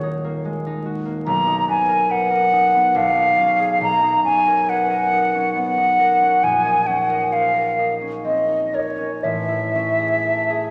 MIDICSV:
0, 0, Header, 1, 3, 480
1, 0, Start_track
1, 0, Tempo, 839161
1, 725, Time_signature, 3, 2, 24, 8
1, 1692, Tempo, 872093
1, 4092, Tempo, 927357
1, 4572, Tempo, 1000000
1, 5752, End_track
2, 0, Start_track
2, 0, Title_t, "Flute"
2, 0, Program_c, 0, 73
2, 723, Note_on_c, 0, 82, 88
2, 947, Note_off_c, 0, 82, 0
2, 968, Note_on_c, 0, 80, 92
2, 1209, Note_on_c, 0, 78, 97
2, 1218, Note_off_c, 0, 80, 0
2, 1694, Note_on_c, 0, 77, 106
2, 1702, Note_off_c, 0, 78, 0
2, 2168, Note_off_c, 0, 77, 0
2, 2172, Note_on_c, 0, 82, 98
2, 2396, Note_off_c, 0, 82, 0
2, 2399, Note_on_c, 0, 80, 99
2, 2647, Note_on_c, 0, 78, 93
2, 2655, Note_off_c, 0, 80, 0
2, 3116, Note_off_c, 0, 78, 0
2, 3120, Note_on_c, 0, 78, 99
2, 3606, Note_on_c, 0, 80, 85
2, 3614, Note_off_c, 0, 78, 0
2, 3843, Note_on_c, 0, 78, 89
2, 3852, Note_off_c, 0, 80, 0
2, 4095, Note_on_c, 0, 77, 90
2, 4103, Note_off_c, 0, 78, 0
2, 4419, Note_off_c, 0, 77, 0
2, 4573, Note_on_c, 0, 75, 78
2, 4813, Note_on_c, 0, 73, 83
2, 4820, Note_off_c, 0, 75, 0
2, 5046, Note_on_c, 0, 76, 75
2, 5053, Note_off_c, 0, 73, 0
2, 5752, Note_off_c, 0, 76, 0
2, 5752, End_track
3, 0, Start_track
3, 0, Title_t, "Harp"
3, 0, Program_c, 1, 46
3, 0, Note_on_c, 1, 27, 64
3, 0, Note_on_c, 1, 39, 70
3, 0, Note_on_c, 1, 58, 55
3, 0, Note_on_c, 1, 66, 59
3, 18, Note_on_c, 1, 63, 53
3, 133, Note_off_c, 1, 58, 0
3, 140, Note_on_c, 1, 58, 51
3, 258, Note_on_c, 1, 56, 53
3, 373, Note_off_c, 1, 63, 0
3, 380, Note_on_c, 1, 63, 55
3, 455, Note_off_c, 1, 56, 0
3, 482, Note_off_c, 1, 66, 0
3, 489, Note_on_c, 1, 66, 59
3, 595, Note_off_c, 1, 58, 0
3, 602, Note_on_c, 1, 58, 50
3, 722, Note_on_c, 1, 35, 66
3, 744, Note_off_c, 1, 27, 0
3, 748, Note_off_c, 1, 39, 0
3, 834, Note_off_c, 1, 63, 0
3, 841, Note_on_c, 1, 63, 58
3, 961, Note_on_c, 1, 59, 56
3, 1078, Note_on_c, 1, 70, 57
3, 1197, Note_on_c, 1, 71, 50
3, 1314, Note_off_c, 1, 70, 0
3, 1321, Note_on_c, 1, 70, 56
3, 1408, Note_off_c, 1, 71, 0
3, 1440, Note_off_c, 1, 63, 0
3, 1447, Note_on_c, 1, 63, 58
3, 1563, Note_off_c, 1, 59, 0
3, 1570, Note_on_c, 1, 59, 51
3, 1678, Note_off_c, 1, 35, 0
3, 1685, Note_on_c, 1, 35, 81
3, 1708, Note_off_c, 1, 70, 0
3, 1711, Note_off_c, 1, 58, 0
3, 1711, Note_off_c, 1, 59, 0
3, 1713, Note_off_c, 1, 66, 0
3, 1804, Note_off_c, 1, 63, 0
3, 1811, Note_on_c, 1, 63, 57
3, 1926, Note_on_c, 1, 61, 52
3, 2039, Note_on_c, 1, 68, 55
3, 2153, Note_off_c, 1, 35, 0
3, 2160, Note_on_c, 1, 35, 65
3, 2182, Note_off_c, 1, 68, 0
3, 2277, Note_off_c, 1, 63, 0
3, 2284, Note_on_c, 1, 63, 59
3, 2394, Note_off_c, 1, 61, 0
3, 2401, Note_on_c, 1, 61, 57
3, 2522, Note_on_c, 1, 70, 57
3, 2642, Note_on_c, 1, 71, 47
3, 2754, Note_off_c, 1, 70, 0
3, 2761, Note_on_c, 1, 70, 61
3, 2850, Note_off_c, 1, 71, 0
3, 2876, Note_off_c, 1, 63, 0
3, 2883, Note_on_c, 1, 63, 47
3, 2999, Note_off_c, 1, 61, 0
3, 3006, Note_on_c, 1, 61, 47
3, 3121, Note_on_c, 1, 59, 50
3, 3236, Note_off_c, 1, 63, 0
3, 3243, Note_on_c, 1, 63, 53
3, 3329, Note_off_c, 1, 59, 0
3, 3356, Note_off_c, 1, 70, 0
3, 3362, Note_on_c, 1, 70, 57
3, 3476, Note_off_c, 1, 61, 0
3, 3482, Note_on_c, 1, 61, 54
3, 3603, Note_on_c, 1, 34, 59
3, 3622, Note_off_c, 1, 35, 0
3, 3716, Note_off_c, 1, 63, 0
3, 3723, Note_on_c, 1, 63, 56
3, 3839, Note_off_c, 1, 61, 0
3, 3846, Note_on_c, 1, 61, 55
3, 3963, Note_off_c, 1, 70, 0
3, 3969, Note_on_c, 1, 70, 48
3, 4092, Note_on_c, 1, 72, 40
3, 4200, Note_off_c, 1, 70, 0
3, 4207, Note_on_c, 1, 70, 52
3, 4293, Note_off_c, 1, 72, 0
3, 4327, Note_off_c, 1, 63, 0
3, 4334, Note_on_c, 1, 63, 44
3, 4446, Note_off_c, 1, 61, 0
3, 4452, Note_on_c, 1, 61, 42
3, 4572, Note_on_c, 1, 60, 48
3, 4681, Note_off_c, 1, 63, 0
3, 4687, Note_on_c, 1, 63, 42
3, 4769, Note_off_c, 1, 60, 0
3, 4800, Note_off_c, 1, 70, 0
3, 4806, Note_on_c, 1, 70, 49
3, 4917, Note_off_c, 1, 61, 0
3, 4923, Note_on_c, 1, 61, 45
3, 5050, Note_on_c, 1, 33, 58
3, 5063, Note_off_c, 1, 34, 0
3, 5064, Note_off_c, 1, 63, 0
3, 5066, Note_off_c, 1, 70, 0
3, 5166, Note_on_c, 1, 64, 46
3, 5288, Note_off_c, 1, 61, 0
3, 5293, Note_on_c, 1, 61, 46
3, 5410, Note_on_c, 1, 68, 45
3, 5531, Note_on_c, 1, 69, 38
3, 5647, Note_off_c, 1, 68, 0
3, 5653, Note_on_c, 1, 68, 48
3, 5736, Note_off_c, 1, 69, 0
3, 5752, Note_off_c, 1, 33, 0
3, 5752, Note_off_c, 1, 61, 0
3, 5752, Note_off_c, 1, 64, 0
3, 5752, Note_off_c, 1, 68, 0
3, 5752, End_track
0, 0, End_of_file